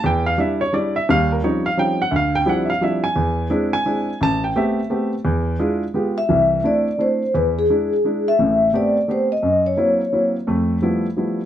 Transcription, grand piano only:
X:1
M:3/4
L:1/8
Q:"Swing" 1/4=172
K:Ephr
V:1 name="Grand piano"
g f e ^c d e | ^e ^A ^c e g ^f | [ef] g ^f [e=f] e ^g- | ^g2 z g3 |
a g e3 z | z6 | [K:C] z6 | z6 |
z6 | z6 | z6 |]
V:2 name="Grand piano"
E,,2 [G,DE] z [G,DE] z | [^D,,G,]2 [^E,G,^B,^C^D] z [E,G,B,CD] z | D,,2 [F,G,CDE] z [F,G,CDE] z | E,,2 [^G,CDE] z [G,CDE] z |
A,,,2 [A,B,CG] z [A,B,CG] z | E,,2 [^G,DEF] z [_A,B,F=G] z | [K:C] [C,,E,]2 [A,CDE] z [A,CDE] z | E,,2 [^G,DE] z [G,DE] z |
[A,,,A,,]2 [A,B,CG] z [A,B,CG] z | ^F,,2 [^F,^A,^B,E] z [F,A,B,E] z | [F,,A,]2 [F,G,A,B,E] z [F,G,A,B,E] z |]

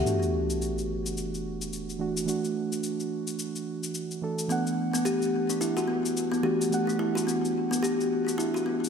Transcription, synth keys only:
X:1
M:4/4
L:1/8
Q:"Swing 16ths" 1/4=108
K:Ador
V:1 name="Synth keys"
[E,A,DF]6- [E,A,DF] [E,A,DF] | [E,A,DF]6- [E,A,DF] [E,A,DA] | [E,A,Df]6- [E,A,Df] [E,A,DF] | [E,A,Df]6- [E,A,Df] z |]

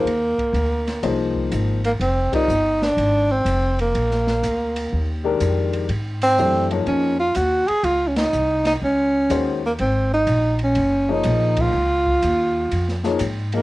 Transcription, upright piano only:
X:1
M:4/4
L:1/8
Q:"Swing" 1/4=123
K:Ablyd
V:1 name="Upright piano"
z4 [F,B,EAc]3 z | z [G,CFBd] z6 | z4 z [E,A,DGB]3 | z2 [=E,=A,DGc] [F,B,_E_A_d]2 z3 |
z6 [E,A,_D_Gc] z | z4 z [F,B,EA_d]3 | z4 z [F,B,EA_d] z [F,B,EAe] |]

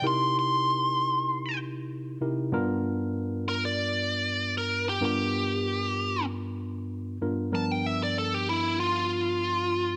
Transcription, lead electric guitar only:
X:1
M:4/4
L:1/16
Q:1/4=96
K:C
V:1 name="Lead electric guitar"
c'2 c'8 z6 | z6 ^A d6 A2 G | G8 z8 | a g e d A G E2 F8 |]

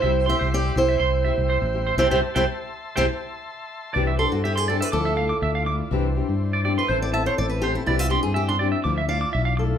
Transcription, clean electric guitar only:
X:1
M:4/4
L:1/16
Q:1/4=122
K:C
V:1 name="Clean electric guitar"
e z c' c z3 e c' z e z c z2 c | [ceg] [ceg] z [ceg] z4 [ceg] z6 z | d e c' z e c' d e d' e f d' e f d' z | z4 z d d c' c z a c z2 c z |
d e c' z e c' d e d' e f d' e f z2 |]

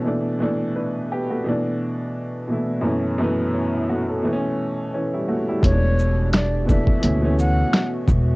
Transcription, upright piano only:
X:1
M:4/4
L:1/16
Q:"Swing 16ths" 1/4=86
K:Edor
V:1 name="Upright piano"
z4 [DB]2 [B,G] [A,F]2 z6 z | z4 [E,C] E [A,F] [CA]2 z3 [E,C] [G,E] [A,F] [G,E]- | [G,E] z12 z3 |]
V:2 name="Upright piano" clef=bass
[B,,E,A,D]2 [B,,E,A,D]6 [B,,E,A,D]4- [B,,E,A,D] z [B,,E,A,E]2 | [F,,B,,E,A,C]2 [F,,B,,E,A,B,]6 [B,,E,A,B,C]4- [B,,E,A,B,C] z3 | [B,,E,A,CD]4- [B,,E,A,CD] z [B,,E,A,D]2 [B,,E,A,C] [B,,E,A,C]4- [B,,E,A,C] z2 |]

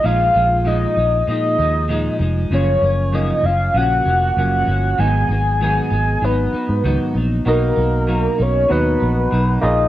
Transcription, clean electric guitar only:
X:1
M:4/4
L:1/8
Q:1/4=97
K:Blyd
V:1 name="Clean electric guitar" clef=bass
[A,,E,G,D] [E,G,D] [A,,E,G,D] [E,G,D] [A,,E,G,D] [E,G,D] [A,,E,G,D] [E,G,D] | [F,,C,E,A,C] [E,A,C] [F,,C,E,A,C] [E,A,C] [C,E,A,C] [E,A,C] [F,,C,E,A,C] [E,A,C] | [G,,D,F,B,D] [F,B,D] [G,,D,F,B,D] [F,B,D] [D,F,B,D] [F,B,D] [G,,D,F,B,D] [F,B,D] | [B,,F,A,D] [F,A,D] [B,,F,A,D] [F,A,D] [B,,F,D] [F,D] [B,,F,D] [E,G,D] |]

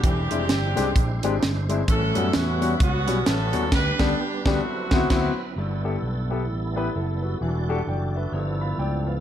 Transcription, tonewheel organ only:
X:1
M:4/4
L:1/8
Q:"Swing" 1/4=130
K:G
V:1 name="Tonewheel organ"
[G,^G,DE^B]8 | [G,^CFB]8 | [G,B,DB]4 [F,CEB]4 | [G,A,B,EA]8 |
[F,G,DFA]4 [=F,B,E_A=A]4 |]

